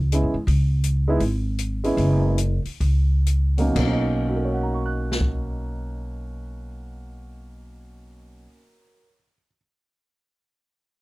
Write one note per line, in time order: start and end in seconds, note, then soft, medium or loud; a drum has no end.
0.00 0.20 C#2 medium
0.12 0.32 G#3 medium
0.12 0.33 B3 soft
0.12 0.33 C#4 soft
0.12 0.33 E4 medium
0.12 closed hi-hat soft
0.23 0.33 F#2 medium
0.34 0.45 G#2 medium
0.47 1.16 C#2 medium
0.47 kick soft
0.47 open hi-hat soft
0.84 closed hi-hat soft
1.08 1.19 G#3 medium
1.08 1.19 B3 medium
1.08 1.19 D#4 medium
1.08 1.20 E4 medium
1.20 1.93 G#1 medium
1.20 kick soft
1.20 open hi-hat soft
1.59 closed hi-hat soft
1.84 2.35 G#3 medium
1.84 2.35 B3 medium
1.84 2.35 C#4 medium
1.84 2.36 E4 medium
1.84 open hi-hat soft
1.97 2.61 F#1 medium
1.97 kick soft
1.97 open hi-hat soft
2.38 closed hi-hat soft
2.65 muted upright bass stroke soft
2.65 open hi-hat soft
2.80 3.72 C#2 medium
2.80 kick soft
2.80 open hi-hat soft
3.26 closed hi-hat soft
3.57 3.63 B2 medium
3.57 3.70 F#3 medium
3.57 3.76 A#3 medium
3.57 3.82 C#4 soft
3.57 3.89 D#4 medium
3.57 open hi-hat soft
3.65 8.39 B2 medium
3.71 8.45 F#3 medium
3.76 8.46 B1 medium
3.76 8.52 A#3 medium
3.76 kick soft
3.76 crash medium
3.84 8.58 C#4 medium
3.90 8.65 D#4 medium
4.29 8.99 F#4 soft
4.36 9.06 A#4 soft
4.45 9.15 C#5 soft
4.54 9.24 F#5 soft
4.63 9.33 A#5 soft
4.74 9.45 C#6 soft
4.86 9.56 F#6 soft
5.12 snare soft
5.21 kick medium